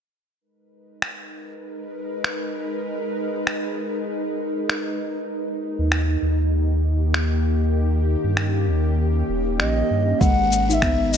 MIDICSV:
0, 0, Header, 1, 6, 480
1, 0, Start_track
1, 0, Key_signature, 5, "minor"
1, 0, Tempo, 612245
1, 324, Time_signature, 4, 2, 24, 8
1, 8759, End_track
2, 0, Start_track
2, 0, Title_t, "Bansuri"
2, 0, Program_c, 0, 73
2, 7518, Note_on_c, 0, 75, 96
2, 8000, Note_on_c, 0, 78, 115
2, 8011, Note_off_c, 0, 75, 0
2, 8379, Note_off_c, 0, 78, 0
2, 8379, Note_on_c, 0, 78, 94
2, 8417, Note_on_c, 0, 76, 102
2, 8425, Note_off_c, 0, 78, 0
2, 8720, Note_on_c, 0, 75, 95
2, 8732, Note_off_c, 0, 76, 0
2, 8759, Note_off_c, 0, 75, 0
2, 8759, End_track
3, 0, Start_track
3, 0, Title_t, "Synth drone"
3, 0, Program_c, 1, 95
3, 319, Note_on_c, 1, 70, 67
3, 320, Note_on_c, 1, 63, 71
3, 320, Note_on_c, 1, 71, 84
3, 322, Note_on_c, 1, 56, 73
3, 4130, Note_off_c, 1, 70, 0
3, 4131, Note_off_c, 1, 71, 0
3, 4132, Note_off_c, 1, 56, 0
3, 4163, Note_on_c, 1, 58, 74
3, 4164, Note_on_c, 1, 67, 86
3, 4165, Note_on_c, 1, 51, 74
3, 6051, Note_off_c, 1, 63, 0
3, 6084, Note_on_c, 1, 61, 73
3, 7972, Note_off_c, 1, 58, 0
3, 7973, Note_off_c, 1, 51, 0
3, 7973, Note_off_c, 1, 67, 0
3, 7985, Note_off_c, 1, 61, 0
3, 8001, Note_on_c, 1, 71, 84
3, 8002, Note_on_c, 1, 59, 75
3, 8002, Note_on_c, 1, 70, 73
3, 8003, Note_on_c, 1, 56, 82
3, 8759, Note_off_c, 1, 56, 0
3, 8759, Note_off_c, 1, 59, 0
3, 8759, Note_off_c, 1, 70, 0
3, 8759, Note_off_c, 1, 71, 0
3, 8759, End_track
4, 0, Start_track
4, 0, Title_t, "Kalimba"
4, 0, Program_c, 2, 108
4, 8004, Note_on_c, 2, 56, 76
4, 8083, Note_off_c, 2, 56, 0
4, 8383, Note_on_c, 2, 63, 61
4, 8474, Note_off_c, 2, 63, 0
4, 8485, Note_on_c, 2, 59, 87
4, 8616, Note_off_c, 2, 59, 0
4, 8759, End_track
5, 0, Start_track
5, 0, Title_t, "Sub bass"
5, 0, Program_c, 3, 38
5, 4538, Note_on_c, 3, 39, 93
5, 4838, Note_off_c, 3, 39, 0
5, 4879, Note_on_c, 3, 39, 94
5, 6401, Note_off_c, 3, 39, 0
5, 6461, Note_on_c, 3, 43, 88
5, 6802, Note_on_c, 3, 39, 92
5, 6813, Note_off_c, 3, 43, 0
5, 7239, Note_off_c, 3, 39, 0
5, 7282, Note_on_c, 3, 27, 86
5, 7523, Note_on_c, 3, 34, 96
5, 7535, Note_off_c, 3, 27, 0
5, 7709, Note_off_c, 3, 34, 0
5, 7767, Note_on_c, 3, 43, 81
5, 7951, Note_off_c, 3, 43, 0
5, 8006, Note_on_c, 3, 32, 94
5, 8759, Note_off_c, 3, 32, 0
5, 8759, End_track
6, 0, Start_track
6, 0, Title_t, "Drums"
6, 802, Note_on_c, 9, 26, 85
6, 881, Note_off_c, 9, 26, 0
6, 1759, Note_on_c, 9, 26, 88
6, 1838, Note_off_c, 9, 26, 0
6, 2721, Note_on_c, 9, 26, 85
6, 2799, Note_off_c, 9, 26, 0
6, 3681, Note_on_c, 9, 26, 87
6, 3759, Note_off_c, 9, 26, 0
6, 4639, Note_on_c, 9, 26, 91
6, 4718, Note_off_c, 9, 26, 0
6, 5600, Note_on_c, 9, 26, 94
6, 5679, Note_off_c, 9, 26, 0
6, 6562, Note_on_c, 9, 26, 88
6, 6640, Note_off_c, 9, 26, 0
6, 7524, Note_on_c, 9, 26, 87
6, 7602, Note_off_c, 9, 26, 0
6, 8005, Note_on_c, 9, 36, 95
6, 8007, Note_on_c, 9, 82, 32
6, 8083, Note_off_c, 9, 36, 0
6, 8086, Note_off_c, 9, 82, 0
6, 8250, Note_on_c, 9, 82, 69
6, 8328, Note_off_c, 9, 82, 0
6, 8389, Note_on_c, 9, 82, 41
6, 8468, Note_off_c, 9, 82, 0
6, 8484, Note_on_c, 9, 26, 96
6, 8485, Note_on_c, 9, 36, 99
6, 8488, Note_on_c, 9, 82, 30
6, 8562, Note_off_c, 9, 26, 0
6, 8564, Note_off_c, 9, 36, 0
6, 8567, Note_off_c, 9, 82, 0
6, 8728, Note_on_c, 9, 82, 68
6, 8759, Note_off_c, 9, 82, 0
6, 8759, End_track
0, 0, End_of_file